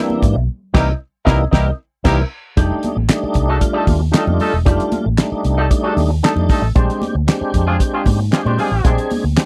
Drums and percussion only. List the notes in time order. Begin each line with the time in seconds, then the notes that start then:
0.10 high conga
0.22 kick, closed hi-hat, muted conga, low conga
0.74 kick, snare, crash
1.27 kick, snare
1.53 kick, snare
2.05 kick, snare, crash
2.57 kick, closed hi-hat, muted conga, low conga
2.83 closed hi-hat, muted conga, high conga
3.09 snare, clap, closed hi-hat
3.34 kick, closed hi-hat
3.61 kick, closed hi-hat, muted conga
3.87 kick, open hi-hat, muted conga, high conga
4.14 snare, clap, closed hi-hat
4.27 high conga
4.40 open hi-hat, muted conga, low conga
4.66 kick, closed hi-hat, low conga
4.80 closed hi-hat
4.92 closed hi-hat, muted conga, high conga
5.18 snare, clap, closed hi-hat
5.44 closed hi-hat, muted conga
5.71 kick, closed hi-hat, muted conga
5.97 open hi-hat, high conga
6.23 snare, clap, closed hi-hat, muted conga
6.37 high conga
6.49 kick, open hi-hat, muted conga, low conga
6.76 kick, closed hi-hat, muted conga, low conga
6.90 closed hi-hat
7.02 closed hi-hat, muted conga, high conga
7.28 snare, clap, closed hi-hat, muted conga
7.54 kick, closed hi-hat, muted conga
7.80 kick, closed hi-hat
8.06 kick, open hi-hat, muted conga, high conga
8.32 snare, clap, closed hi-hat, muted conga
8.47 high conga
8.59 open hi-hat, muted conga, low conga
8.85 kick, closed hi-hat, low conga
8.98 closed hi-hat
9.11 open hi-hat, muted conga, high conga
9.37 snare, clap, closed hi-hat